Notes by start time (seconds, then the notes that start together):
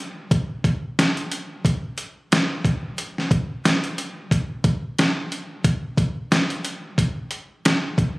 0.31 kick, closed hi-hat
0.64 kick, closed hi-hat
0.99 snare, closed hi-hat
1.17 closed hi-hat
1.32 closed hi-hat
1.65 kick, closed hi-hat
1.98 closed hi-hat
2.32 snare, closed hi-hat
2.65 kick, closed hi-hat
2.98 closed hi-hat
3.18 snare
3.31 kick, closed hi-hat
3.65 snare, closed hi-hat
3.84 closed hi-hat
3.98 closed hi-hat
4.31 kick, closed hi-hat
4.64 kick, closed hi-hat
4.99 snare, closed hi-hat
5.32 closed hi-hat
5.64 kick, closed hi-hat
5.97 kick, closed hi-hat
6.32 snare, closed hi-hat
6.50 closed hi-hat
6.65 closed hi-hat
6.98 kick, closed hi-hat
7.31 closed hi-hat
7.65 snare, closed hi-hat
7.98 kick, closed hi-hat